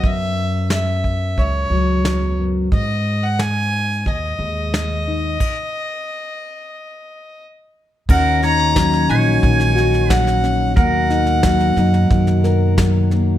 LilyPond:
<<
  \new Staff \with { instrumentName = "Fiddle" } { \time 4/4 \key gis \minor \tempo 4 = 90 e''4 e''4 cis''4. r8 | dis''8. fis''16 gis''4 dis''2~ | dis''2. r4 | fis''8 ais''4 gis''4. fis''4 |
fis''2. r4 | }
  \new Staff \with { instrumentName = "Pedal steel guitar" } { \time 4/4 \key gis \minor r1 | r1 | r1 | ais'8 cis''4 cis''4. ais'4 |
ais'2. r4 | }
  \new Staff \with { instrumentName = "Tonewheel organ" } { \time 4/4 \key gis \minor r1 | r1 | r1 | <cis' fis'>1 |
<b, fis'>1 | }
  \new Staff \with { instrumentName = "Tonewheel organ" } { \clef bass \time 4/4 \key gis \minor r1 | r1 | r1 | <dis ais>1~ |
<dis ais>1 | }
  \new Staff \with { instrumentName = "Nylon-string guitar" } { \clef bass \time 4/4 \key gis \minor << { r1 | r2. r8 dis'8 | r1 | cis'8 dis'8 cis'8 dis'4 fis'4 cis'8 |
ais8 dis'8 ais8 dis'4 ais'4 ais8 | } \\ { fis,2~ fis,8 fis8 e,8 fis,8 | gis,2~ gis,8 gis4. | r1 | dis4 fis4 dis4 fis4 |
dis4 fis4 dis4 fis4 | } >> }
  \new Staff \with { instrumentName = "Upright bass" } { \clef bass \time 4/4 \key gis \minor fis,2 cis,8 cis,4. | gis,2 dis,8 dis,4. | r1 | dis,4. ais,,8 ais,,2 |
dis,4. fis,8 fis,2 | }
  \new DrumStaff \with { instrumentName = "Drums" } \drummode { \time 4/4 bd4 sn8 bd8 bd4 sn4 | bd4 sn4 bd4 sn4 | <cymc bd>4 r4 r4 r4 | <cymc bd sn>8 sn16 sn16 <bd sn>16 sn16 sn8 <bd sn>16 sn16 sn16 sn16 <bd sn>16 sn16 sn8 |
<bd sn>8 sn16 sn16 <bd sn>16 sn16 sn16 sn16 <bd sn>16 sn16 sn8 <bd sn>8 sn8 | }
>>